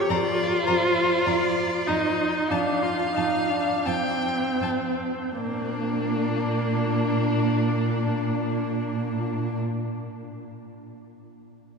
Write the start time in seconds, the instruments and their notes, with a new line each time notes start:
Already playing: violin C#5
0.01 viola G4
0.09 cello F2, viola F4, violin D5 A#5
0.66 cello F2, violin C5 A#5
1.26 cello F2, violin D5 A#5
1.88 cello F2, viola D#4, violin D#5 A#5
2.50 cello F2, viola D4, violin F5 A5
2.82 viola F4
3.15 cello F2, viola D#4, violin A5
3.50 viola D4
3.85 cello F2, viola C4, violin G5 A5
4.61 cello F2, violin A5
5.38 cello A#2, viola A#3, violin D4